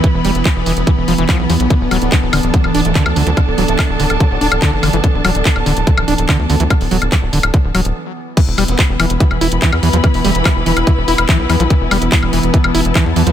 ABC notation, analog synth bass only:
X:1
M:4/4
L:1/16
Q:1/4=144
K:Ddor
V:1 name="Analog synth bass" clef=bass
z E,,, E,,, E,,, z E,,, E,,, E,,, z E,,, E,,, E,,, z B,,, E,, B,,, | z D,,, D,,, D,,, z D,,, D,,, D,,, z D,,, D,,, D,,, z D,, D,, D,, | z D,,, D,,, D,,, z D,,, D,,, D,,, z D,,, D,,, D,,, z ^F,,, F,,, F,,, | z D,,, D,,, D,,, z D,,, D,,, D,,, z D,,, D,,, D,,, z D,, D,, D,, |
z D,,, D,,, D,,, z D,,, D,,, D,,, z D,,, D,,, D,,, z4 | z E,,, E,,, E,,, z E,,, E,,, E,,, z E,,, E,,, E,,, z E,, E,, E,, | z E,,, E,,, E,,, z E,,, E,,, E,,, z E,,, E,,, E,,, z B,,, E,, B,,, | z E,,, E,,, E,,, z E,,, E,,, E,,, z E,,, E,,, E,,, z E,, E,, E,, |]